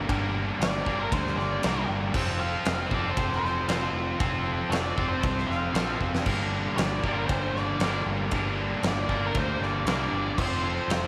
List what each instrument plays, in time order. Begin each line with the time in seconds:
0.09 picked electric bass G1, distorted electric guitar G2 D3 G3 A#3 D4 A#4, kick, ride bell
0.60 picked electric bass G1, lead electric guitar D5, snare, ride bell
0.85 picked electric bass G1, distorted electric guitar G2 D3 G3 A#3 D4 A#4, kick
0.99 lead electric guitar A#4
1.12 picked electric bass D2, lead electric guitar C5, kick, ride bell
1.27 snare
1.36 picked electric bass G1, lead electric guitar D5, snare
1.63 picked electric bass C2, distorted electric guitar G2 D3 G3 A#3 D4 A#4, snare, ride bell
1.88 picked electric bass G1
2.14 picked electric bass F1, distorted electric guitar F3 C4 F4 A4, kick, crash
2.40 lead electric guitar F5
2.65 picked electric bass F1, snare, ride bell
2.86 lead electric guitar D5
2.91 picked electric bass F1, distorted electric guitar F3 C4 F4 A4, kick
3.11 lead electric guitar C5
3.17 picked electric bass F1, kick, ride bell
3.32 snare
3.36 lead electric guitar C5
3.43 picked electric bass F1, snare
3.67 picked electric bass F1, distorted electric guitar F3 C4 F4 A4, snare, ride bell
3.93 picked electric bass F1
4.19 picked electric bass F1, distorted electric guitar F3 C4 F4 A4, kick, ride bell
4.70 picked electric bass F1, lead electric guitar D5, snare, ride bell
4.97 picked electric bass F1, distorted electric guitar F3 C4 F4 A4, kick
5.09 lead electric guitar C5
5.21 picked electric bass C2, lead electric guitar C5, kick, ride bell
5.38 snare
5.47 picked electric bass F1, lead electric guitar F5
5.51 snare
5.73 picked electric bass A#1, distorted electric guitar F3 C4 F4 A4, snare, ride bell
6.01 picked electric bass F1, kick
6.15 snare
6.25 picked electric bass G1, distorted electric guitar G2 D3 G3 A#3 D4 A#4, kick, crash
6.77 picked electric bass G1, lead electric guitar D5, snare, ride bell
7.03 picked electric bass G1, distorted electric guitar G2 D3 G3 A#3 D4 A#4, kick
7.12 lead electric guitar A#4
7.26 picked electric bass G1, lead electric guitar C5, kick, ride bell
7.52 picked electric bass G1, lead electric guitar D5
7.56 snare
7.79 picked electric bass G1, distorted electric guitar G2 D3 G3 A#3, snare, ride bell
7.84 distorted electric guitar D4 A#4
8.06 picked electric bass G1
8.31 picked electric bass G1, distorted electric guitar G2 D3 G3 A#3 D4 A#4, kick, ride bell
8.83 picked electric bass G1, snare, ride bell
8.88 lead electric guitar D5
9.08 picked electric bass G1, distorted electric guitar G2 D3 G3 A#3 D4 A#4, kick
9.25 lead electric guitar A#4
9.34 picked electric bass D2, lead electric guitar C5, kick, ride bell
9.60 picked electric bass G1, lead electric guitar D5, snare
9.85 picked electric bass C2, distorted electric guitar G2 D3 G3 A#3 D4, lead electric guitar D5, snare, ride bell
9.89 distorted electric guitar A#4
10.12 picked electric bass G1
10.37 picked electric bass F1, distorted electric guitar F3 C4 F4 A4, lead electric guitar C5, kick, crash
10.64 lead electric guitar C5
10.88 picked electric bass F1, snare, ride bell